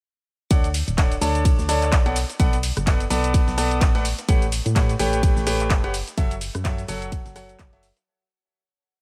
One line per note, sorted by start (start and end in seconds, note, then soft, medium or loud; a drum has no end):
0.51 0.82 D2 medium
0.51 0.66 D4 medium
0.51 0.66 A4 medium
0.51 0.66 C#5 medium
0.51 0.66 D5 medium
0.51 0.66 F#5 loud
0.51 kick loud
0.51 closed hi-hat loud
0.51 ride medium
0.51 shaker soft
0.64 closed hi-hat soft
0.64 shaker soft
0.74 open hi-hat loud
0.74 ride medium
0.74 shaker medium
0.88 1.18 D1 medium
0.88 closed hi-hat soft
0.88 shaker soft
0.98 1.13 D4 medium
0.98 1.13 A4 medium
0.98 1.13 C#5 medium
0.98 1.13 D5 medium
0.98 1.13 F#5 medium
0.98 kick loud
0.98 snare loud
0.98 clap loud
0.98 closed hi-hat loud
0.98 ride medium
0.98 shaker soft
1.12 closed hi-hat soft
1.12 shaker soft
1.21 1.53 D2 medium
1.21 1.66 D4 loud
1.21 1.66 A4 medium
1.21 1.66 C#5 medium
1.21 1.66 D5 medium
1.21 1.66 A5 loud
1.21 open hi-hat loud
1.21 ride medium
1.21 shaker medium
1.35 closed hi-hat soft
1.35 shaker soft
1.45 kick loud
1.45 closed hi-hat loud
1.45 ride medium
1.45 shaker soft
1.59 1.94 D2 medium
1.59 snare soft
1.59 shaker soft
1.69 2.03 D4 medium
1.69 2.03 A4 medium
1.69 2.03 C#5 medium
1.69 2.03 D5 medium
1.69 2.03 A5 loud
1.69 cross-stick medium
1.69 snare soft
1.69 open hi-hat loud
1.69 ride medium
1.69 shaker medium
1.82 clap soft
1.82 closed hi-hat soft
1.82 shaker soft
1.92 2.24 B1 loud
1.92 kick loud
1.92 snare loud
1.92 clap loud
1.92 closed hi-hat medium
1.92 ride medium
1.92 shaker soft
2.06 2.15 B3 medium
2.06 2.15 A4 medium
2.06 2.15 C#5 medium
2.06 2.15 D5 medium
2.06 2.15 F#5 loud
2.06 cross-stick medium
2.06 closed hi-hat soft
2.16 open hi-hat loud
2.16 ride medium
2.16 shaker medium
2.30 snare soft
2.30 closed hi-hat soft
2.30 shaker soft
2.40 2.71 B1 loud
2.40 2.55 B3 loud
2.40 2.55 A4 medium
2.40 2.55 B4 medium
2.40 2.55 D5 medium
2.40 2.55 F#5 loud
2.40 kick loud
2.40 closed hi-hat medium
2.40 ride medium
2.40 shaker soft
2.53 closed hi-hat soft
2.53 ride soft
2.53 shaker soft
2.63 open hi-hat loud
2.63 ride medium
2.63 shaker medium
2.77 3.07 F#1 medium
2.77 cross-stick medium
2.77 closed hi-hat soft
2.77 shaker soft
2.87 3.02 B3 medium
2.87 3.02 A4 medium
2.87 3.02 B4 medium
2.87 3.02 D5 medium
2.87 3.02 F#5 loud
2.87 kick loud
2.87 snare loud
2.87 clap loud
2.87 closed hi-hat medium
2.87 ride medium
2.87 shaker soft
3.00 closed hi-hat soft
3.00 shaker soft
3.10 3.42 B1 medium
3.10 3.55 B3 loud
3.10 3.55 A4 medium
3.10 3.55 B4 medium
3.10 3.55 D5 loud
3.10 3.55 A5 loud
3.10 open hi-hat loud
3.10 ride medium
3.10 shaker medium
3.24 closed hi-hat soft
3.24 ride soft
3.24 shaker soft
3.34 kick loud
3.34 closed hi-hat loud
3.34 ride medium
3.34 shaker soft
3.48 3.83 B1 medium
3.48 snare medium
3.48 shaker soft
3.58 3.92 B3 loud
3.58 3.92 A4 medium
3.58 3.92 B4 medium
3.58 3.92 D5 medium
3.58 3.92 A5 loud
3.58 cross-stick medium
3.58 open hi-hat loud
3.58 ride medium
3.58 shaker medium
3.71 closed hi-hat soft
3.71 shaker soft
3.81 4.13 A1 loud
3.81 kick loud
3.81 snare loud
3.81 clap loud
3.81 closed hi-hat loud
3.81 ride medium
3.81 shaker soft
3.95 4.04 A3 medium
3.95 4.04 A4 medium
3.95 4.04 B4 medium
3.95 4.04 D5 medium
3.95 4.04 F#5 loud
3.95 snare soft
3.95 closed hi-hat soft
4.05 open hi-hat loud
4.05 ride medium
4.05 shaker medium
4.19 snare medium
4.19 closed hi-hat soft
4.19 shaker soft
4.29 4.60 A1 loud
4.29 4.44 A3 loud
4.29 4.44 G4 medium
4.29 4.44 B4 medium
4.29 4.44 C#5 medium
4.29 4.44 F#5 loud
4.29 kick loud
4.29 closed hi-hat medium
4.29 ride medium
4.29 shaker soft
4.42 closed hi-hat soft
4.42 shaker soft
4.52 open hi-hat loud
4.52 ride medium
4.52 shaker medium
4.66 4.96 A2 medium
4.66 closed hi-hat soft
4.66 shaker soft
4.76 4.91 A3 medium
4.76 4.91 G4 medium
4.76 4.91 B4 medium
4.76 4.91 C#5 medium
4.76 4.91 F#5 medium
4.76 kick loud
4.76 snare loud
4.76 clap loud
4.76 closed hi-hat medium
4.76 ride medium
4.76 shaker soft
4.89 closed hi-hat soft
4.89 shaker soft
4.99 5.31 A1 medium
4.99 5.44 A3 loud
4.99 5.44 G4 medium
4.99 5.44 B4 medium
4.99 5.44 C#5 medium
4.99 5.44 G5 loud
4.99 open hi-hat loud
4.99 ride medium
4.99 shaker medium
5.13 closed hi-hat soft
5.13 shaker soft
5.23 kick loud
5.23 closed hi-hat medium
5.23 ride medium
5.23 shaker soft
5.37 5.72 A1 medium
5.37 snare soft
5.37 shaker soft
5.47 5.81 A3 loud
5.47 5.81 G4 medium
5.47 5.81 B4 medium
5.47 5.81 C#5 medium
5.47 5.81 G5 loud
5.47 cross-stick medium
5.47 snare soft
5.47 open hi-hat loud
5.47 ride medium
5.47 shaker medium
5.60 clap soft
5.60 closed hi-hat soft
5.60 shaker soft
5.70 6.02 F#1 loud
5.70 kick loud
5.70 snare loud
5.70 clap loud
5.70 closed hi-hat medium
5.70 ride medium
5.70 shaker soft
5.84 5.93 G4 medium
5.84 5.93 B4 medium
5.84 5.93 C#5 medium
5.84 5.93 F#5 loud
5.84 cross-stick medium
5.84 closed hi-hat soft
5.94 open hi-hat loud
5.94 ride medium
5.94 shaker medium
6.08 snare soft
6.08 closed hi-hat soft
6.08 shaker soft
6.18 6.49 F#1 medium
6.18 6.33 F#3 medium
6.18 6.33 F#4 medium
6.18 6.33 A4 medium
6.18 6.33 C#5 medium
6.18 6.33 E5 loud
6.18 kick loud
6.18 closed hi-hat medium
6.18 ride medium
6.18 shaker soft
6.31 closed hi-hat soft
6.31 ride soft
6.31 shaker soft
6.41 open hi-hat loud
6.41 ride medium
6.41 shaker medium
6.55 6.84 F#2 medium
6.55 cross-stick medium
6.55 closed hi-hat soft
6.55 shaker soft
6.65 6.80 F#3 medium
6.65 6.80 F#4 medium
6.65 6.80 A4 medium
6.65 6.80 C#5 medium
6.65 6.80 E5 loud
6.65 kick loud
6.65 snare loud
6.65 clap loud
6.65 closed hi-hat medium
6.65 ride loud
6.65 shaker soft
6.78 closed hi-hat soft
6.78 shaker soft
6.88 7.20 F#1 medium
6.88 7.33 F#3 loud
6.88 7.33 F#4 medium
6.88 7.33 A4 loud
6.88 7.33 C#5 loud
6.88 7.33 F#5 loud
6.88 open hi-hat loud
6.88 ride medium
6.88 shaker medium
7.02 closed hi-hat soft
7.02 ride soft
7.02 shaker soft
7.12 kick loud
7.12 closed hi-hat medium
7.12 ride medium
7.12 shaker soft
7.26 7.55 F#1 medium
7.26 snare medium
7.26 closed hi-hat soft
7.26 shaker soft
7.36 7.70 F#3 loud
7.36 7.70 F#4 medium
7.36 7.70 A4 medium
7.36 7.70 C#5 loud
7.36 7.70 F#5 loud
7.36 cross-stick medium
7.36 open hi-hat loud
7.36 ride medium
7.36 shaker medium
7.49 closed hi-hat soft
7.49 shaker soft
7.59 7.91 F#1 loud
7.59 kick loud
7.59 snare loud
7.59 clap loud
7.59 closed hi-hat medium
7.59 ride medium
7.59 shaker soft
7.73 7.85 F#3 medium
7.73 7.85 F#4 medium
7.73 7.85 A4 medium
7.73 7.85 C#5 medium
7.73 7.85 E5 loud
7.73 snare soft
7.73 closed hi-hat soft
7.83 open hi-hat loud
7.83 ride medium
7.83 shaker medium
7.96 snare medium
7.96 closed hi-hat soft
7.96 shaker soft